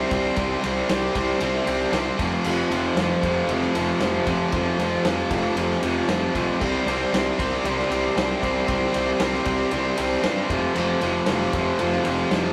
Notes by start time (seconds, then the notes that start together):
Already playing: G3 C4
0.10 C2 C3 G3 C4, kick, ride
0.36 C2 C3 G3 C4, kick, ride
0.62 C2 C3 G3 C4, snare, ride
0.88 C2 C3 G3 C4, snare, ride
1.14 C2 C3 G3 C4, kick, ride
1.40 C2 C3 G3 C4, ride
1.65 C2 C3 G3 C4, ride
1.91 C2 C3 G3 C4, snare, ride
2.17 F1 F2 C3 F3, kick, ride
2.44 F1 F2 C3 F3, crash
2.69 F1 F2 C3 F3, ride
2.95 F1 F2 C3 F3, snare, ride
3.11 snare
3.21 F1 F2 C3 F3, kick, ride
3.47 F1 F2 C3 F3, ride
3.62 snare
3.74 F1 F2 C3 F3, ride
4.00 F1 F2 C3 F3, snare, ride
4.26 F1 F2 C3 F3, kick, ride
4.51 F1 F2 C3 F3, kick, ride
4.78 F1 F2 C3 F3, snare, ride
5.04 F1 F2 C3 F3, snare, ride
5.18 snare
5.30 F1 F2 C3 F3, kick, ride
5.55 F1 F2 C3 F3, ride
5.70 snare
5.82 F1 F2 C3 F3, ride
6.08 F1 F2 C3 F3, snare, ride
6.34 A#1 F2 C3 F3, kick, ride
6.59 C2 C3 G3 C4, kick, crash
6.86 C2 C3 G3 C4, snare, ride
7.13 C2 C3 G3 C4, snare, ride
7.38 C2 C3 G3 C4, kick, ride
7.64 C2 C3 G3 C4, ride
7.79 snare
7.90 C2 C3 G3 C4, ride
8.16 C2 C3 G3 C4, snare, ride
8.42 C2 C3 G3 C4, kick, ride
8.67 C2 C3 G3 C4, kick, ride
8.93 C2 C3 G3 C4, ride
9.19 C2 C3 G3 C4, snare, ride
9.34 snare
9.45 C2 C3 G3 C4, kick, ride
9.71 C2 C3 G3 C4, ride
9.97 C2 C3 G3 C4, ride
10.22 G2 C3 G3 C4, snare, ride
10.48 F1 F2 C3 F3, kick, ride
10.74 F1 F2 C3 F3, crash
11.00 F1 F2 C3 F3, snare, ride
11.26 F1 F2 C3 F3, snare, ride
11.40 snare
11.52 F1 F2 C3 F3, kick, ride
11.78 F1 F2 C3 F3, ride
11.92 snare
12.04 F1 F2 C3 F3, ride
12.31 F1 F2 C3 F3, snare, ride